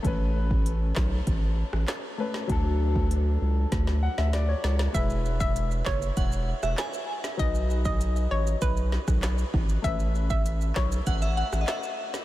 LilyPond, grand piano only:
\new Staff \with { instrumentName = "Grand piano" } { \time 4/4 \key e \major \tempo 4 = 98 << { r1 | r2 r8 fis''16 e''16 d''16 cis''8. | r1 | r1 |
r1 | } \\ { <a cis' b'>2.~ <a cis' b'>8 <a cis' b'>8 | <fis d' a'>1 | <gis e' b'>1 | <fis dis' b'>1 |
<a cis' b'>1 | } >> }